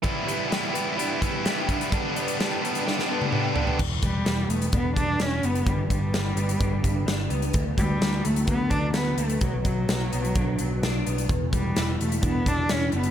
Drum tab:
CC |----------------|----------------|x---------------|----------------|
HH |x-x-x-x-x-x-x-xx|x-xxx-xx--------|--x-x-xxx-x-x-xx|x-x-x-xxx-x-x-xx|
SD |----o-------o---|----o---oo------|----o-------o---|----o-------o---|
T1 |----------------|-----------o----|----------------|----------------|
T2 |----------------|------------o---|----------------|----------------|
FT |----------------|--------------oo|----------------|----------------|
BD |o---------o---o-|o---------------|o-o-----o-o-----|o-o-----o-o-----|

CC |----------------|----------------|----------------|
HH |x-x-x-xxx-x-x-xx|x-x-x-xxx-x-x-xx|x-x-x-xxx-x-x-xx|
SD |----o-------o---|----o-------o---|----o-------o---|
T1 |----------------|----------------|----------------|
T2 |----------------|----------------|----------------|
FT |----------------|----------------|----------------|
BD |o-o-----o-o-----|o-o-----o-------|o-o-----o-o-----|